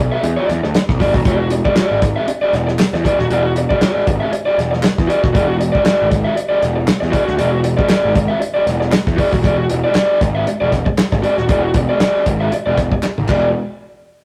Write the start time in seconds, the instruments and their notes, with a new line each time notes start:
0.12 overdriven electric guitar F#4 G#4 E5
0.23 picked electric bass E2, muted overdriven electric guitar stroke, closed hi-hat
0.37 overdriven electric guitar F#4 G#4 D5
0.49 picked electric bass E2, muted overdriven electric guitar stroke, snare, closed hi-hat
0.63 picked electric bass D2, muted overdriven electric guitar stroke, snare
0.74 muted overdriven electric guitar stroke, snare, closed hi-hat
0.89 picked electric bass B1, kick, snare
1.00 picked electric bass G#1, overdriven electric guitar F#4 G#4 D5, kick, snare, open hi-hat
1.14 picked electric bass D#1, muted overdriven electric guitar stroke, kick, snare
1.25 picked electric bass E1, overdriven electric guitar F#4 G#4 D5, kick, closed hi-hat
1.40 muted overdriven electric guitar stroke
1.50 muted overdriven electric guitar stroke, closed hi-hat
1.65 overdriven electric guitar F#4 G#4 D5, kick
1.75 overdriven electric guitar F#4 G#4 D5, muted picked electric bass stroke, snare, clap, closed hi-hat
1.91 picked electric bass G#1
2.02 muted overdriven electric guitar stroke, kick, snare, closed hi-hat
2.16 overdriven electric guitar F#4 G#4 E5
2.28 muted overdriven electric guitar stroke, closed hi-hat
2.42 overdriven electric guitar F#4 G#4 D5
2.53 picked electric bass E1, muted overdriven electric guitar stroke, snare, closed hi-hat
2.67 muted overdriven electric guitar stroke, snare
2.79 snare, clap, closed hi-hat
2.93 picked electric bass E2, muted overdriven electric guitar stroke, snare
3.04 overdriven electric guitar F#4 G#4 D5, kick, closed hi-hat
3.19 picked electric bass D#1, muted overdriven electric guitar stroke, snare
3.30 picked electric bass E1, overdriven electric guitar F#4 G#4 D5, closed hi-hat
3.46 muted overdriven electric guitar stroke
3.56 muted overdriven electric guitar stroke, closed hi-hat
3.69 overdriven electric guitar F#4 G#4 D5, kick
3.81 overdriven electric guitar F#4 G#4 D5, snare, clap, closed hi-hat
3.96 muted picked electric bass stroke
4.07 picked electric bass G#1, muted overdriven electric guitar stroke, kick, closed hi-hat
4.20 overdriven electric guitar F#4 G#4 E5
4.32 muted overdriven electric guitar stroke, closed hi-hat
4.46 overdriven electric guitar F#4 G#4 D5
4.57 picked electric bass E1, muted overdriven electric guitar stroke, snare, closed hi-hat
4.71 muted overdriven electric guitar stroke, snare
4.83 muted overdriven electric guitar stroke, snare, clap, closed hi-hat
4.98 picked electric bass E2, kick, snare
5.08 overdriven electric guitar F#4 G#4 D5, closed hi-hat
5.23 picked electric bass D#1, muted overdriven electric guitar stroke, kick, snare
5.33 picked electric bass E1, overdriven electric guitar F#4 G#4 D5, kick, closed hi-hat
5.48 muted overdriven electric guitar stroke
5.59 muted overdriven electric guitar stroke, closed hi-hat
5.72 overdriven electric guitar F#4 G#4 D5, kick
5.83 overdriven electric guitar F#4 G#4 D5, muted picked electric bass stroke, snare, clap, closed hi-hat
6.02 picked electric bass G#1
6.10 muted overdriven electric guitar stroke, kick, snare, closed hi-hat
6.25 overdriven electric guitar F#4 G#4 E5
6.35 muted overdriven electric guitar stroke, closed hi-hat
6.49 overdriven electric guitar F#4 G#4 D5
6.61 picked electric bass E1, muted overdriven electric guitar stroke, snare, closed hi-hat
6.76 muted overdriven electric guitar stroke
6.87 snare, clap, closed hi-hat
7.00 picked electric bass E2, muted overdriven electric guitar stroke, snare
7.11 overdriven electric guitar F#4 G#4 D5, kick, closed hi-hat
7.25 picked electric bass D2, muted overdriven electric guitar stroke, snare
7.37 picked electric bass E1, overdriven electric guitar F#4 G#4 D5, closed hi-hat
7.52 muted overdriven electric guitar stroke
7.63 muted overdriven electric guitar stroke, closed hi-hat
7.77 overdriven electric guitar F#4 G#4 D5, kick
7.88 overdriven electric guitar F#4 G#4 D5, muted picked electric bass stroke, snare, clap, closed hi-hat
8.05 picked electric bass G#1
8.15 muted overdriven electric guitar stroke, kick, closed hi-hat
8.28 overdriven electric guitar F#4 G#4 E5
8.40 muted overdriven electric guitar stroke, closed hi-hat
8.54 overdriven electric guitar F#4 G#4 D5
8.65 picked electric bass E1, muted overdriven electric guitar stroke, snare, closed hi-hat
8.80 muted overdriven electric guitar stroke, snare
8.91 muted overdriven electric guitar stroke, snare, clap, closed hi-hat
9.07 picked electric bass E2, kick, snare
9.17 overdriven electric guitar F#4 G#4 D5, kick, open hi-hat
9.32 picked electric bass D#1, muted overdriven electric guitar stroke, kick, snare
9.43 picked electric bass E1, overdriven electric guitar F#4 G#4 D5, kick, closed hi-hat
9.58 muted overdriven electric guitar stroke
9.70 picked electric bass E1, muted overdriven electric guitar stroke, closed hi-hat
9.84 overdriven electric guitar F#4 G#4 D5
9.95 overdriven electric guitar F#4 G#4 D5, snare, clap, closed hi-hat
10.21 picked electric bass G#1, muted overdriven electric guitar stroke, kick, snare, closed hi-hat
10.35 overdriven electric guitar F#4 G#4 E5
10.47 muted overdriven electric guitar stroke, muted picked electric bass stroke, closed hi-hat
10.61 picked electric bass E1, overdriven electric guitar F#4 G#4 D5
10.71 muted overdriven electric guitar stroke, kick, snare, closed hi-hat
10.86 muted overdriven electric guitar stroke, kick
10.98 muted picked electric bass stroke, snare, clap, closed hi-hat
11.12 picked electric bass G#1, muted overdriven electric guitar stroke, kick, snare
11.22 overdriven electric guitar F#4 G#4 D5, closed hi-hat
11.37 picked electric bass D#1, muted overdriven electric guitar stroke, snare
11.48 picked electric bass E1, overdriven electric guitar F#4 G#4 D5, kick, closed hi-hat
11.63 muted overdriven electric guitar stroke
11.74 picked electric bass E1, muted overdriven electric guitar stroke, kick, closed hi-hat
11.89 overdriven electric guitar F#4 G#4 D5
12.00 overdriven electric guitar F#4 G#4 D5, snare, clap, closed hi-hat
12.26 picked electric bass G#1, muted overdriven electric guitar stroke, kick, closed hi-hat
12.40 overdriven electric guitar F#4 G#4 E5
12.52 muted overdriven electric guitar stroke, muted picked electric bass stroke, closed hi-hat
12.66 picked electric bass E1, overdriven electric guitar F#4 G#4 D5
12.77 muted overdriven electric guitar stroke, kick, snare, closed hi-hat
12.92 muted overdriven electric guitar stroke, kick
13.03 muted overdriven electric guitar stroke, muted picked electric bass stroke, snare, clap
13.18 picked electric bass G#1, high tom
13.29 picked electric bass E1, overdriven electric guitar F#4 G#4 D5, kick, clap, crash